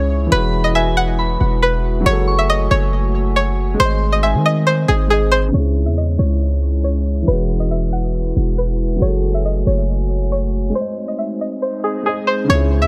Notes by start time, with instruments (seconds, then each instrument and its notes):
Already playing: 808-style bass C#2, grand piano C#3 C#4 E4 G#4, glass harmonica G#3 C#4 E4 C#5, synth pluck C#5, synth bell C#6
0.27 grand piano E3 E4
0.32 808-style bass E1, glass harmonica F#4 B4, grand piano F#4, synth pluck B4, synth bell B5
0.37 grand piano G#4
0.64 synth pluck D#5
0.75 synth pluck E5, synth bell G#5
0.97 synth pluck F#5
1.19 synth bell B5
1.41 808-style bass E1
1.63 synth pluck B4
2.00 grand piano F#3 F#4
2.06 808-style bass F#1, glass harmonica A3 F#4 C#5 G#5, grand piano G#4, synth pluck C#5
2.11 grand piano A4
2.27 synth bell C#6
2.39 synth pluck E5
2.50 synth pluck D#5
2.71 808-style bass F#1, synth pluck C#5
3.36 synth pluck C#5
3.74 grand piano G#3 G#4
3.80 808-style bass G#1, glass harmonica G#3 C4 D#4 C5, synth pluck C5, synth bell C6
3.85 grand piano D#5
4.12 synth pluck D#5
4.23 synth pluck E5, synth bell G#5
4.34 808-style bass D#3
4.46 synth pluck D#5
4.67 synth pluck C5
4.88 808-style bass G#1, synth pluck G#4
5.07 grand piano G#3 G#4 C5, synth pluck G#4
5.13 grand piano D#5
5.32 synth pluck C5
5.48 grand piano C#3 C#4
5.54 808-style bass C#2, glass harmonica G#3 C#4 E4 C#5, grand piano E4, synth pluck C#5
5.59 grand piano G#4
5.86 808-style bass E2, synth pluck E5
5.97 synth pluck D#5
6.19 808-style bass C#2, synth pluck C#5
6.84 synth pluck C#5
7.22 grand piano E3 E4
7.28 808-style bass E1, glass harmonica G#3 F#4 B4, grand piano F#4, synth pluck B4
7.33 grand piano G#4
7.60 synth pluck D#5
7.71 synth pluck E5
7.93 synth pluck F#5
8.36 808-style bass E1
8.58 synth pluck B4
8.96 grand piano F#3 F#4
9.01 808-style bass F#1, glass harmonica A3 C#5 G#5, grand piano G#4, synth pluck C#5
9.07 grand piano A4
9.34 synth pluck E5
9.45 synth pluck D#5
9.67 808-style bass F#1, synth pluck C#5
10.32 synth pluck C#5
10.70 grand piano G#3 G#4
10.75 glass harmonica G#3 C4 D#4 C5, synth pluck C5, grand piano C5
10.80 grand piano D#5
11.08 synth pluck D#5
11.18 synth pluck E5
11.41 synth pluck D#5
11.62 synth pluck C5
11.84 synth pluck G#4
12.03 grand piano G#3 G#4 C5, synth pluck G#4
12.08 grand piano D#5
12.27 synth pluck C5
12.44 grand piano C#3 C#4
12.49 808-style bass C#2, glass harmonica G#3 C#4 E4 C#5, grand piano E4, synth pluck C#5
12.55 grand piano G#4
12.82 808-style bass E2, synth pluck E5